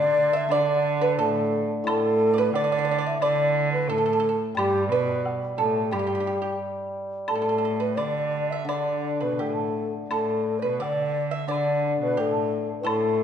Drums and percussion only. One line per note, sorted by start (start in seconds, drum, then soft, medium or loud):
0.50 high woodblock soft
1.87 high woodblock medium
2.54 low woodblock soft
3.22 high woodblock soft
4.57 high woodblock medium
5.25 low woodblock soft
5.92 high woodblock soft
7.28 high woodblock medium
7.98 high woodblock soft
8.69 high woodblock soft
9.40 low woodblock soft
10.11 high woodblock soft
10.82 low woodblock soft
11.51 high woodblock soft
12.87 high woodblock medium